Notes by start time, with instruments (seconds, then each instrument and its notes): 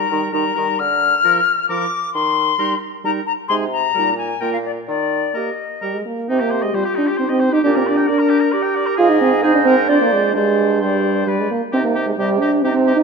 Already playing: flute A#5
0.10 bassoon D#3, french horn G3, clarinet D#4, oboe A#4
0.31 bassoon D#3, french horn G3, clarinet D#4, oboe A#4, flute A#5
0.55 bassoon D#3, french horn G3, clarinet D#4, oboe A#4
0.79 bassoon D3, flute F6
1.24 french horn F3, clarinet F4, oboe A#4
1.69 french horn F3, clarinet F4, oboe A#4, flute D6
2.13 bassoon D#3, flute C6
2.59 french horn G3, clarinet D#4, oboe A#4
3.04 french horn G3, clarinet D#4, oboe A#4, flute A#5
3.26 flute A#5
3.48 bassoon C3, french horn G#3, clarinet D#4, oboe G#4, flute C6
3.71 flute A#5
3.95 bassoon A#2, french horn G3, clarinet D#4, oboe A#4
4.17 flute G#5
4.40 bassoon A#2, french horn A#3, clarinet F4, oboe A#4, flute G5
4.53 flute F5
4.65 flute D5
4.86 bassoon D#3, flute D5
5.34 french horn A#3, clarinet G4, oboe A#4, flute D#5
5.82 french horn G3, clarinet G4, oboe A#4
5.95 french horn G#3
6.05 french horn A#3
6.29 bassoon C3, french horn C4, oboe D#4, flute G4, clarinet G4
6.40 french horn A#3, oboe G4
6.51 oboe C5
6.62 french horn G#3, oboe D#5
6.74 french horn G3, clarinet F4, oboe C5
6.85 oboe G4
6.96 french horn D4, oboe D#4
7.07 oboe G4
7.17 french horn C4, clarinet D#4, oboe C5
7.29 french horn C4, oboe D#5
7.40 oboe C5
7.53 french horn D#4, oboe G4
7.63 bassoon A#2, french horn D4, oboe G4, clarinet G4, flute A#4
7.75 french horn C4, oboe A#4
7.87 french horn D4, oboe D5
7.97 oboe G5
8.07 french horn D4, clarinet A#4, oboe D5
8.19 oboe A#4
8.29 oboe G4
8.40 oboe A#4
8.53 clarinet G4, oboe D5
8.63 oboe G5
8.75 oboe D5
8.86 oboe A#4
8.97 bassoon G#2, french horn F4, oboe G#4, clarinet G#4
9.01 flute D#5
9.10 french horn D#4
9.21 french horn C4
9.43 french horn D#4, oboe G#4, clarinet C5, flute D#5
9.54 french horn D4
9.65 french horn C4, oboe A#4
9.88 bassoon F2, french horn D4, oboe C5, clarinet D5, flute D5
10.01 french horn A#3
10.13 french horn G#3
10.34 bassoon G2, french horn G#3, clarinet D4, oboe C5, flute D5
10.81 french horn G3, oboe C5, flute D5
11.27 french horn G3, oboe B4, flute D5
11.40 french horn G#3
11.51 french horn A#3
11.72 bassoon C3, french horn C4, clarinet D#4, oboe G4, flute D#5
11.84 french horn A#3
11.95 oboe G4, flute D#5
12.07 french horn G#3
12.17 bassoon C3, french horn G3, clarinet G4, oboe G4, flute D#5
12.40 french horn D4, oboe G4, flute D#5
12.62 bassoon C3, french horn C4, clarinet D#4, oboe G4, flute D#5
12.74 french horn C4
12.86 oboe G4, flute D#5
12.97 french horn D#4